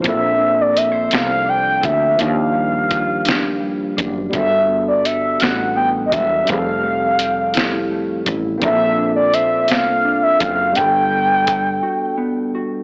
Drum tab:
HH |x-xx-x|x-xx-x|x-xx-x|x-xx-x|
SD |---o--|---o--|---o--|---o--|
BD |o----o|--o--o|o----o|-----o|

HH |x-xx-x|x-x---|
SD |---o--|------|
BD |o----o|--o---|